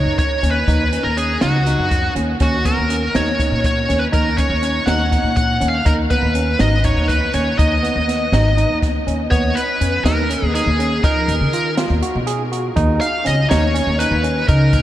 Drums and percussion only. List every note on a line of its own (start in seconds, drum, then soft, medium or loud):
0.19 kick medium
0.19 closed hi-hat medium
0.43 closed hi-hat soft
0.68 kick loud
0.68 closed hi-hat medium
0.93 closed hi-hat soft
1.18 closed hi-hat medium
1.41 snare loud
1.41 closed hi-hat medium
1.66 closed hi-hat medium
1.91 kick medium
1.91 closed hi-hat medium
2.16 closed hi-hat soft
2.40 kick medium
2.40 closed hi-hat medium
2.65 kick medium
2.65 closed hi-hat medium
2.90 closed hi-hat medium
3.15 snare loud
3.15 closed hi-hat medium
3.40 kick medium
3.40 closed hi-hat medium
3.64 kick medium
3.64 closed hi-hat medium
3.90 snare soft
3.90 closed hi-hat soft
4.13 kick loud
4.13 closed hi-hat medium
4.38 kick medium
4.38 closed hi-hat medium
4.63 closed hi-hat medium
4.87 snare loud
4.87 closed hi-hat medium
5.12 kick medium
5.12 snare soft
5.12 closed hi-hat medium
5.37 kick medium
5.37 closed hi-hat medium
5.61 closed hi-hat soft
5.86 kick medium
5.86 closed hi-hat medium
6.10 kick medium
6.10 closed hi-hat medium
6.35 closed hi-hat medium
6.59 snare loud
6.59 closed hi-hat medium
6.84 kick medium
6.84 closed hi-hat medium
7.09 kick medium
7.09 closed hi-hat medium
7.34 closed hi-hat soft
7.59 kick loud
7.59 closed hi-hat medium
7.84 closed hi-hat medium
8.09 snare soft
8.09 closed hi-hat medium
8.33 snare medium
8.33 closed hi-hat medium
8.58 closed hi-hat soft
8.83 kick medium
8.83 snare soft
8.83 closed hi-hat medium
9.08 closed hi-hat soft
9.32 kick medium
9.32 closed hi-hat medium
9.57 closed hi-hat medium
9.81 closed hi-hat medium
10.06 snare loud
10.06 closed hi-hat medium
10.31 closed hi-hat medium
10.55 snare soft
10.55 closed hi-hat medium
10.80 closed hi-hat medium
11.04 kick loud
11.04 closed hi-hat medium
11.29 closed hi-hat medium
11.53 closed hi-hat medium
11.77 snare medium
11.77 closed hi-hat medium
12.03 closed hi-hat medium
12.27 closed hi-hat medium
12.53 closed hi-hat soft
12.77 kick loud
12.77 closed hi-hat medium
13.01 closed hi-hat medium
13.26 snare soft
13.26 closed hi-hat medium
13.51 snare loud
13.51 closed hi-hat medium
13.75 closed hi-hat medium
14.00 closed hi-hat medium
14.24 closed hi-hat medium
14.49 kick loud
14.49 closed hi-hat medium
14.73 kick medium
14.73 closed hi-hat medium